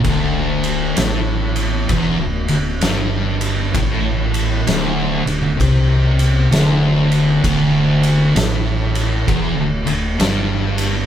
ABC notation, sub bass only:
X:1
M:4/4
L:1/16
Q:"Swing" 1/4=65
K:Cmix
V:1 name="Sub bass" clef=bass
D,,,4 A,,,4 E,,, D,,, D,,,2 G,,,4 | A,,,4 D,,,2 D,,, D,,, C,,4 D,,,4 | D,,,4 A,,,4 E,,, D,,, D,,,2 G,,,4 |]